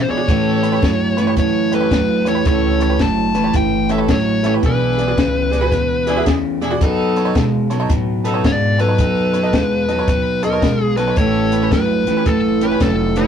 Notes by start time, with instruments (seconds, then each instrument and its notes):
0.01 lead electric guitar C5
0.08 clean electric guitar E2 B2, horn section D4 E4 G#4, honky-tonk piano G#4 D5, lead electric guitar C#5, muted upright bass stroke
0.17 honky-tonk piano F#4 G#4 D5
0.27 clean electric guitar A2 E3, upright bass A2, horn section C#4 G4 A4, kick, snare, closed hi-hat
0.63 honky-tonk piano B4 C#5, snare, closed hi-hat
0.72 honky-tonk piano G4 B4 C#5
0.82 upright bass G2, clean electric guitar A2 F#3, kick, snare, closed hi-hat
1.17 clean electric guitar A2 E3, honky-tonk piano B4 C#5, snare, closed hi-hat
1.27 honky-tonk piano G4 B4 C#5
1.37 upright bass F#2, clean electric guitar A2 E3, lead electric guitar C#5, kick, snare, closed hi-hat
1.71 horn section C#4 G4 A4, honky-tonk piano B4 C#5, lead electric guitar B4, snare, closed hi-hat
1.80 honky-tonk piano G4 B4 C#5
1.91 upright bass E2, clean electric guitar A2 F#3, kick, snare, closed hi-hat
2.25 clean electric guitar A2 E3, horn section C#4 G4 A4, honky-tonk piano B4 C#5, lead electric guitar C#5, snare, closed hi-hat
2.34 honky-tonk piano G4 B4 C#5
2.45 upright bass C#2, clean electric guitar A2 E3, horn section C#4 G4 A4, lead electric guitar C#5, kick, snare, closed hi-hat
2.80 honky-tonk piano B4 C#5, lead electric guitar C#5, snare, closed hi-hat
2.89 honky-tonk piano G4 B4 C#5
2.99 upright bass F#1, clean electric guitar A2 F#3, lead electric guitar A5, kick, snare, closed hi-hat
3.35 clean electric guitar A2 E3, honky-tonk piano B4 C#5, snare, closed hi-hat
3.44 honky-tonk piano G4 B4 C#5
3.54 upright bass G1, clean electric guitar A2 E3, lead electric guitar G5, kick, snare, closed hi-hat
3.89 horn section C#4 G4 A4, honky-tonk piano B4 C#5, lead electric guitar E5, snare, closed hi-hat
3.98 honky-tonk piano G4 B4 C#5
4.08 upright bass A1, clean electric guitar A2 F#3, lead electric guitar C#5, kick, snare, closed hi-hat
4.43 clean electric guitar A2 E3, horn section C#4 G4 A4, honky-tonk piano B4 E5, lead electric guitar C#5, snare, closed hi-hat
4.54 honky-tonk piano G4 B4 C#5
4.62 upright bass B1, clean electric guitar E2 B2, horn section D4 E4 G#4, lead electric guitar B4, kick, snare, closed hi-hat
4.98 honky-tonk piano G#4 D5, snare, closed hi-hat
5.08 honky-tonk piano F#4 G#4 D5
5.17 upright bass C#2, clean electric guitar E2 C#3, kick, snare, closed hi-hat
5.51 clean electric guitar E2 B2, honky-tonk piano G#4 D5, snare, closed hi-hat
5.61 honky-tonk piano F#4 G#4 B4
5.72 upright bass D2, clean electric guitar E2 B2, kick, snare, closed hi-hat
6.07 horn section D4 E4 G#4, honky-tonk piano G#4 D5, snare, closed hi-hat
6.16 honky-tonk piano F#4 G#4 E5
6.26 upright bass E2, clean electric guitar E2 C#3, kick, snare, closed hi-hat
6.61 clean electric guitar E2 B2, horn section D4 E4 G#4, honky-tonk piano G#4 D5, snare, closed hi-hat
6.71 honky-tonk piano F#4 G#4 D5
6.81 upright bass F#2, clean electric guitar B2 F#3, horn section B3 D#4 A4, kick, snare, closed hi-hat
7.16 honky-tonk piano A4 C#5, snare, closed hi-hat
7.25 honky-tonk piano D#4 A4 C#5
7.35 upright bass B2, clean electric guitar B2 G#3, kick, snare, closed hi-hat
7.70 clean electric guitar B2 F#3, honky-tonk piano A4 C#5, snare, closed hi-hat
7.80 honky-tonk piano D#4 A4 C#5
7.90 upright bass A2, clean electric guitar B2 F#3, kick, snare, closed hi-hat
8.24 horn section B3 D#4 A4, honky-tonk piano A4 B4, snare, closed hi-hat
8.34 honky-tonk piano D#4 A4 C#5
8.44 upright bass G#2, clean electric guitar B2 G#3, lead electric guitar D5, kick, snare, closed hi-hat
8.78 clean electric guitar B2 F#3, horn section B3 D#4 A4, honky-tonk piano A4 C#5, lead electric guitar B4, snare, closed hi-hat
8.88 honky-tonk piano D#4 A4 C#5
8.98 upright bass F#2, clean electric guitar B2 F#3, horn section B3 D#4 A4, kick, snare, closed hi-hat
9.33 honky-tonk piano A4 C#5, snare, closed hi-hat
9.43 honky-tonk piano D#4 A4 D#5
9.53 upright bass E2, clean electric guitar B2 G#3, kick, snare, closed hi-hat
9.88 clean electric guitar B2 F#3, honky-tonk piano A4 D#5, snare, closed hi-hat
9.98 honky-tonk piano D#4 A4 C#5
10.08 upright bass D#2, clean electric guitar B2 F#3, lead electric guitar B4, kick, snare, closed hi-hat
10.43 horn section B3 D#4 D#5, honky-tonk piano A4 C#5, lead electric guitar A#4, snare, closed hi-hat
10.52 honky-tonk piano D#4 A4 C#5
10.62 upright bass B1, clean electric guitar B2 G#3, kick, snare, closed hi-hat
10.97 clean electric guitar B2 F#3, horn section B3 D#4 A4, honky-tonk piano A4 C#5, lead electric guitar B4, snare, closed hi-hat
11.07 honky-tonk piano D#4 A4 C#5
11.16 upright bass A1, clean electric guitar A2 E3, horn section C#4 G4 A4, lead electric guitar C#5, kick, snare, closed hi-hat
11.52 honky-tonk piano G4 B4, snare, closed hi-hat
11.62 honky-tonk piano C#4 G4 B4
11.71 upright bass G1, clean electric guitar A2 F#3, lead electric guitar B4, kick, snare, closed hi-hat
12.07 clean electric guitar A2 E3, honky-tonk piano G4 B4, muted upright bass stroke, snare, closed hi-hat
12.17 honky-tonk piano C#4 G4 B4
12.26 upright bass F#1, clean electric guitar A2 E3, lead electric guitar A4, kick, snare, closed hi-hat
12.61 horn section C#4 G4 B4, honky-tonk piano G4 B4, lead electric guitar B4, snare, closed hi-hat
12.71 honky-tonk piano C#4 G4 B4
12.80 upright bass F1, clean electric guitar A2 F#3, lead electric guitar A4, kick, snare, closed hi-hat
13.16 clean electric guitar A2 E3, horn section C#4 G4 A4, lead electric guitar E4, honky-tonk piano G4 B4, snare, closed hi-hat